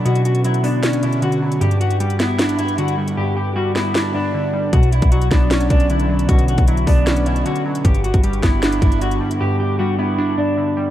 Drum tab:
HH |xxxxxxo-xxxxxx-x|xxxxxxx-xxxxxx-x|----------------|xxxxxxx-xxxxxx-x|
SD |--------o-------|------o-o-------|------o-o-------|------o-o-------|
BD |----------------|----------------|----------------|o--o--o---o-----|

HH |xxxxxxo-xxxxxx-x|xxxxxxx-xxxxxx-x|----------------|
SD |--------o-------|------o-o-------|----------------|
BD |o--o--o---------|o--o--o---o-----|----------------|